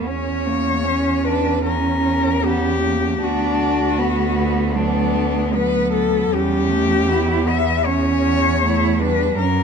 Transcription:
0.05 3.23 E2 medium
0.05 0.85 C#4 medium
0.05 0.48 C#4 medium
0.05 1.26 C#5 medium
0.47 0.86 A#3 medium
0.84 1.26 C#4 medium
0.84 3.17 C#4 medium
1.24 1.65 D4 medium
1.24 1.65 B4 medium
1.65 2.41 C#4 medium
1.65 2.46 A#4 medium
2.43 2.81 B3 medium
2.43 3.24 G4 medium
2.81 3.20 A#3 medium
3.19 6.31 D2 medium
3.19 3.60 B3 medium
3.19 4.00 D4 medium
3.19 4.79 F#4 medium
3.58 4.02 A3 medium
3.98 4.78 B3 medium
3.98 4.77 B3 medium
4.75 5.15 F#3 medium
4.75 5.56 B3 medium
4.75 5.55 D4 medium
5.14 5.56 A3 medium
5.54 6.33 F#3 medium
5.54 6.34 B3 medium
5.54 5.93 B4 medium
5.93 6.35 A4 medium
6.32 9.35 E2 medium
6.32 6.71 G3 medium
6.32 7.11 C#4 medium
6.32 7.50 G4 loud
6.69 7.08 A3 medium
7.09 7.88 B3 medium
7.09 7.47 E4 medium
7.47 7.88 B3 medium
7.47 7.87 E5 medium
7.85 8.63 C#4 medium
7.85 8.62 C#4 medium
7.85 9.01 C#5 medium
8.62 9.02 A3 medium
8.62 9.02 E4 medium
8.99 9.40 G3 medium
8.99 9.42 D4 medium
8.99 9.38 B4 medium
9.38 9.63 F#2 medium
9.38 9.63 F#3 medium
9.38 9.63 C#4 medium
9.38 9.63 A#4 medium

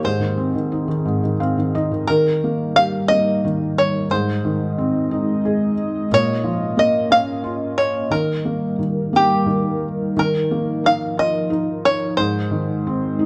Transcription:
0.00 2.03 D#3 medium
0.00 2.06 C4 medium
0.00 2.06 G#4 medium
0.04 1.04 G#2 medium
0.04 1.36 C5 medium
0.20 0.53 D#3 soft
0.38 1.39 C4 soft
0.55 0.86 D#3 soft
0.72 1.73 D#4 soft
0.88 1.22 D#3 medium
1.05 2.05 G#2 medium
1.23 1.56 D#3 soft
1.40 2.06 C4 medium
1.40 1.72 F5 medium
1.58 1.90 D#3 soft
1.74 2.07 D#4 soft
1.74 2.06 D#5 medium
1.92 2.07 D#3 soft
2.07 3.43 D#3 medium
2.07 4.09 G3 medium
2.07 4.09 D#4 medium
2.07 2.76 A#4 medium
2.07 4.09 A#4 medium
2.44 3.09 A#3 soft
2.76 4.07 G4 soft
2.76 3.08 F5 medium
3.08 4.08 A#3 soft
3.08 3.78 D#5 medium
3.45 4.09 D#3 medium
3.78 4.09 C#5 medium
4.11 6.07 G#2 medium
4.11 6.10 G#3 medium
4.11 6.09 D#4 medium
4.11 5.40 C5 medium
4.11 8.08 D#5 medium
4.45 5.74 D#3 soft
4.78 6.07 C4 medium
5.11 6.08 D#4 medium
5.45 6.10 G#4 medium
6.12 8.08 A#2 medium
6.12 8.10 A#3 medium
6.12 8.10 C#4 medium
6.12 6.75 C#5 medium
6.44 7.74 F3 soft
6.77 8.07 A#3 medium
6.77 7.11 D#5 medium
7.11 8.08 C#4 medium
7.11 7.77 F5 loud
7.44 8.09 F4 medium
7.78 8.12 C#5 medium
8.10 8.77 D#3 medium
8.10 10.13 G3 medium
8.10 13.26 D#4 medium
8.10 12.14 A#4 medium
8.10 8.75 A#4 medium
8.45 9.11 A#3 soft
8.79 9.45 D#3 soft
9.13 10.13 A#3 soft
9.13 9.88 G4 medium
9.46 10.13 D#3 medium
10.16 12.15 D#3 medium
10.16 12.17 F3 medium
10.16 10.88 A#4 medium
10.51 11.82 A#3 soft
10.84 11.49 D#4 soft
10.84 11.19 F5 medium
11.17 12.15 F4 soft
11.17 11.88 D#5 medium
11.50 12.16 D#4 medium
11.85 12.17 C#5 medium
12.17 13.26 G#2 medium
12.17 13.26 G#3 medium
12.17 13.26 C5 medium
12.51 13.26 D#3 soft
12.87 13.26 C4 medium
13.19 13.26 D#4 medium

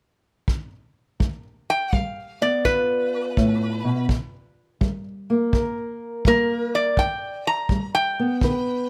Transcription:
0.48 kick medium
1.20 1.87 G2 medium
1.20 kick medium
1.70 1.93 G5 medium
1.93 2.60 G3 medium
1.93 2.40 F5 medium
1.93 kick medium
2.41 4.07 B3 soft
2.41 2.65 D5 medium
2.65 3.32 D3 soft
2.65 4.07 F4 soft
2.65 4.05 B4 medium
2.65 kick soft
3.37 3.84 A2 soft
3.37 kick medium
3.84 4.09 B2 soft
4.09 4.76 C3 medium
4.09 kick soft
4.81 5.48 G3 medium
4.81 kick medium
5.30 6.25 A#3 soft
5.52 6.20 G2 soft
5.52 6.95 A#4 medium
5.52 kick medium
6.25 6.93 G3 medium
6.25 6.98 A#3 soft
6.25 6.73 A#4 medium
6.25 kick medium
6.75 6.97 D5 medium
6.97 7.65 G2 medium
6.97 7.45 G5 medium
6.97 kick medium
7.47 7.93 A#5 medium
7.69 8.37 G3 medium
7.69 kick medium
7.95 8.89 G5 medium
8.19 8.89 B3 soft
8.41 8.89 D3 medium
8.41 8.89 B4 medium
8.41 kick medium

